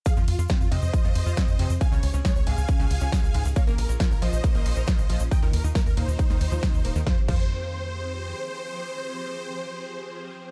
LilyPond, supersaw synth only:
\new Staff \with { instrumentName = "Supersaw synth" } { \time 4/4 \key f \minor \tempo 4 = 137 << { <aes' f''>8 r4 <c'' ees''>2~ <c'' ees''>8 | <f'' aes''>8 r4 <f'' aes''>2~ <f'' aes''>8 | <des'' f''>8 r4 <c'' ees''>2~ <c'' ees''>8 | <ees'' g''>8 r4 <ees' c''>2~ <ees' c''>8 |
c''8 c''2.~ c''8~ | c''1 | } \\ { r16 f'16 f'16 r16 f'16 f'16 r2 r8 | r16 des''16 des''16 r16 des''16 des''16 r2 r8 | r16 bes'16 bes'16 r16 bes'16 bes'16 r2 r8 | r16 bes'16 bes'16 r16 bes'16 bes'16 r2 r8 |
r1 | r1 | } >> }